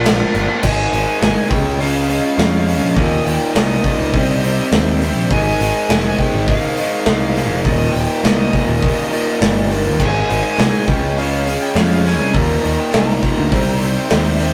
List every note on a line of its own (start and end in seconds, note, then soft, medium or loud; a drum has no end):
0.00 0.21 A#1 medium
0.00 0.60 A#2 medium
0.00 0.41 D4 medium
0.00 0.47 F4 medium
0.00 0.62 A#4 medium
0.05 0.31 F3 loud
0.05 0.32 A#3 medium
0.05 0.33 D4 loud
0.05 0.34 F4 loud
0.05 snare loud
0.05 clap medium
0.05 crash medium
0.32 0.46 G1 medium
0.32 0.61 F3 medium
0.32 0.56 A3 medium
0.32 0.48 A#3 medium
0.32 0.47 D4 medium
0.32 0.46 F4 medium
0.32 crash medium
0.36 0.57 B3 medium
0.36 0.59 C4 medium
0.42 0.60 D4 medium
0.42 0.61 E4 medium
0.47 0.62 A#3 medium
0.47 0.62 D4 medium
0.47 0.61 F4 medium
0.47 0.63 F4 medium
0.47 0.64 G4 medium
0.53 0.66 A4 medium
0.53 0.67 B4 medium
0.59 0.90 G#2 medium
0.59 0.91 D#3 loud
0.59 0.92 G#3 loud
0.59 0.63 C5 medium
0.59 0.69 D5 medium
0.63 0.86 G#1 loud
0.63 1.51 D#4 medium
0.63 1.50 G#4 medium
0.63 1.51 C5 medium
0.63 1.49 G#5 loud
0.63 kick loud
0.63 crash loud
0.92 1.04 G#1 medium
0.92 1.19 G#2 medium
0.92 1.19 D#3 medium
0.92 1.20 G#3 medium
0.92 open hi-hat medium
1.20 1.33 G#1 medium
1.20 1.48 G#2 medium
1.20 1.49 D#3 medium
1.20 1.49 G#3 medium
1.20 snare loud
1.20 open hi-hat medium
1.49 2.17 C#2 loud
1.49 1.77 C#3 medium
1.49 1.78 G#3 loud
1.49 1.78 C#4 loud
1.49 2.95 F4 medium
1.49 2.95 G#4 medium
1.49 2.96 C#5 medium
1.49 1.80 G5 medium
1.49 kick loud
1.49 open hi-hat medium
1.78 2.07 C#3 medium
1.78 2.08 G#3 medium
1.78 2.08 C#4 medium
1.78 2.36 F5 medium
1.78 open hi-hat medium
2.08 2.34 C#3 medium
2.08 2.36 G#3 medium
2.08 2.36 C#4 medium
2.08 open hi-hat medium
2.36 2.82 F2 loud
2.36 2.65 C#3 medium
2.36 2.66 G#3 medium
2.36 2.66 C#4 loud
2.36 2.94 F5 medium
2.36 snare loud
2.36 open hi-hat medium
2.66 2.95 C#3 medium
2.66 2.95 G#3 medium
2.66 2.95 C#4 medium
2.66 open hi-hat medium
2.82 2.94 A#1 medium
2.94 3.19 D#2 loud
2.94 3.25 D#2 medium
2.94 3.25 A#2 medium
2.94 3.26 D#3 loud
2.94 4.12 D#4 medium
2.94 4.12 G4 medium
2.94 4.12 A#4 medium
2.94 3.23 D#5 medium
2.94 kick loud
2.94 open hi-hat medium
3.25 3.37 D#2 medium
3.25 3.54 D#2 medium
3.25 3.55 A#2 medium
3.25 3.55 D#3 medium
3.25 3.53 G5 medium
3.25 open hi-hat medium
3.53 3.77 C2 medium
3.53 3.83 D#2 medium
3.53 3.84 A#2 medium
3.53 3.84 D#3 medium
3.53 4.67 D#5 medium
3.53 snare loud
3.53 open hi-hat medium
3.84 4.12 D#2 medium
3.84 4.12 A#2 loud
3.84 4.13 D#3 loud
3.84 kick medium
3.84 open hi-hat medium
3.99 4.10 C#2 medium
4.13 4.58 C2 loud
4.13 4.41 C3 medium
4.13 4.41 G3 loud
4.13 4.42 C4 loud
4.13 5.29 D#4 medium
4.13 5.29 G4 medium
4.13 5.28 C5 medium
4.13 kick loud
4.13 open hi-hat medium
4.42 4.70 C3 medium
4.42 4.71 G3 medium
4.42 4.72 C4 medium
4.42 open hi-hat medium
4.71 5.16 D#2 loud
4.71 5.00 C3 medium
4.71 5.00 G3 medium
4.71 5.01 C4 loud
4.71 snare loud
4.71 open hi-hat medium
5.01 5.29 C3 medium
5.01 5.29 G3 medium
5.01 5.30 C4 medium
5.01 open hi-hat medium
5.16 5.27 A#1 medium
5.30 5.53 G#1 loud
5.30 5.58 G#2 medium
5.30 5.59 D#3 loud
5.30 5.60 G#3 loud
5.30 7.62 D#4 medium
5.30 7.62 G#4 medium
5.30 7.62 C5 medium
5.30 6.19 G#5 loud
5.30 kick loud
5.30 open hi-hat medium
5.60 5.71 G#1 medium
5.60 5.88 G#2 medium
5.60 5.89 D#3 medium
5.60 5.90 G#3 medium
5.60 open hi-hat medium
5.89 6.11 F1 medium
5.89 6.18 G#2 medium
5.89 6.18 D#3 medium
5.89 6.19 G#3 medium
5.89 snare loud
5.89 open hi-hat medium
6.19 6.46 G#2 loud
6.19 6.47 D#3 loud
6.19 6.47 G#3 loud
6.19 6.49 G5 medium
6.19 kick medium
6.19 open hi-hat medium
6.34 6.56 G#1 medium
6.47 6.76 G#2 medium
6.47 6.77 D#3 medium
6.47 6.78 G#3 medium
6.47 7.05 F5 loud
6.47 kick loud
6.47 open hi-hat medium
6.76 7.05 G#2 medium
6.76 7.06 D#3 medium
6.76 7.06 G#3 medium
6.76 open hi-hat medium
7.06 7.50 C2 loud
7.06 7.36 G#2 medium
7.06 7.36 D#3 loud
7.06 7.37 G#3 loud
7.06 7.61 F5 medium
7.06 snare loud
7.06 open hi-hat medium
7.36 7.64 G#2 medium
7.36 7.64 D#3 medium
7.36 7.64 G#3 medium
7.36 snare soft
7.36 open hi-hat medium
7.50 7.62 F1 medium
7.63 7.87 D#1 loud
7.63 7.93 D#2 loud
7.63 7.94 A#2 medium
7.63 7.94 D#3 loud
7.63 9.97 D#4 medium
7.63 9.97 G4 medium
7.63 9.97 A#4 medium
7.63 7.91 D#5 medium
7.63 kick loud
7.63 open hi-hat medium
7.92 8.05 D#1 medium
7.92 8.21 D#2 medium
7.92 8.23 A#2 medium
7.92 8.24 D#3 loud
7.92 8.23 G5 medium
7.92 open hi-hat medium
8.22 8.46 C2 medium
8.22 8.52 D#2 medium
8.22 8.52 A#2 medium
8.22 8.53 D#3 medium
8.22 9.36 D#5 medium
8.22 snare loud
8.22 open hi-hat medium
8.53 8.81 D#2 loud
8.53 8.82 A#2 loud
8.53 8.83 D#3 loud
8.53 kick medium
8.53 open hi-hat medium
8.67 8.90 D#1 medium
8.82 9.10 D#2 medium
8.82 9.10 A#2 medium
8.82 9.11 D#3 medium
8.82 kick loud
8.82 open hi-hat medium
9.11 9.38 D#2 medium
9.11 9.39 A#2 medium
9.11 9.39 D#3 medium
9.11 open hi-hat medium
9.39 9.87 G1 loud
9.39 9.67 D#2 medium
9.39 9.68 A#2 loud
9.39 9.69 D#3 loud
9.39 snare loud
9.39 open hi-hat medium
9.69 9.97 D#2 medium
9.69 9.97 A#2 medium
9.69 9.98 D#3 medium
9.69 open hi-hat medium
9.86 9.97 D#2 medium
9.98 10.22 G#1 loud
9.98 10.26 G#2 medium
9.98 10.26 D#3 medium
9.98 10.28 G#3 loud
9.98 10.87 D#4 medium
9.98 10.85 G#4 medium
9.98 10.87 C5 medium
9.98 10.87 G#5 medium
9.98 kick loud
9.98 crash medium
10.27 10.41 G#1 medium
10.27 10.56 G#2 medium
10.27 10.57 D#3 medium
10.27 10.58 G#3 medium
10.27 open hi-hat medium
10.57 10.69 C2 medium
10.57 10.85 G#2 medium
10.57 10.86 D#3 medium
10.57 10.86 G#3 medium
10.57 snare loud
10.57 clap medium
10.57 open hi-hat medium
10.86 11.54 C#2 loud
10.86 11.16 C#3 loud
10.86 11.17 G#3 loud
10.86 11.17 C#4 loud
10.86 12.32 F4 medium
10.86 12.32 G#4 medium
10.86 12.32 C#5 medium
10.86 11.17 G5 medium
10.86 kick loud
10.86 open hi-hat medium
11.17 11.45 C#3 medium
11.17 11.45 G#3 medium
11.17 11.46 C#4 loud
11.17 11.62 F5 medium
11.17 open hi-hat medium
11.46 11.74 C#3 medium
11.46 11.75 G#3 medium
11.46 11.75 C#4 medium
11.46 open hi-hat medium
11.62 11.77 G5 medium
11.75 12.20 F2 loud
11.75 12.03 C#3 medium
11.75 12.03 G#3 loud
11.75 12.04 C#4 loud
11.75 11.91 F5 medium
11.75 snare loud
11.75 clap medium
11.75 open hi-hat medium
11.92 12.07 F5 medium
12.04 12.32 C#3 medium
12.04 12.32 G#3 medium
12.04 12.33 C#4 loud
12.04 12.36 G#5 medium
12.04 snare soft
12.04 open hi-hat medium
12.20 12.31 C2 medium
12.33 12.57 D#2 loud
12.33 12.62 D#2 medium
12.33 12.63 A#2 medium
12.33 12.64 D#3 loud
12.33 13.50 D#4 medium
12.33 13.50 G4 medium
12.33 13.51 A#4 medium
12.33 12.79 A#5 loud
12.33 kick loud
12.33 open hi-hat medium
12.64 12.93 D#2 medium
12.64 12.76 D#2 medium
12.64 12.94 A#2 medium
12.64 12.94 D#3 medium
12.64 open hi-hat medium
12.79 12.94 G5 medium
12.93 13.16 C2 medium
12.93 13.21 D#2 medium
12.93 13.22 A#2 medium
12.93 13.22 D#3 medium
12.93 13.81 A#5 medium
12.93 snare loud
12.93 clap medium
12.93 open hi-hat medium
13.22 13.50 D#2 medium
13.22 13.50 A#2 loud
13.22 13.50 D#3 loud
13.22 kick medium
13.22 open hi-hat medium
13.38 13.49 D2 medium
13.51 13.96 C2 loud
13.51 13.80 C3 medium
13.51 13.81 G3 loud
13.51 13.81 C4 loud
13.51 14.53 D#4 medium
13.51 14.53 G4 medium
13.51 14.53 C5 medium
13.51 kick loud
13.51 open hi-hat medium
13.81 14.09 C3 medium
13.81 14.10 G3 medium
13.81 14.11 C4 medium
13.81 open hi-hat medium
14.10 14.53 D#2 loud
14.10 14.39 C3 loud
14.10 14.39 G3 loud
14.10 14.40 C4 loud
14.10 snare loud
14.10 clap loud
14.10 open hi-hat medium
14.39 14.53 C3 medium
14.39 14.53 G3 medium
14.39 14.53 C4 medium
14.39 open hi-hat medium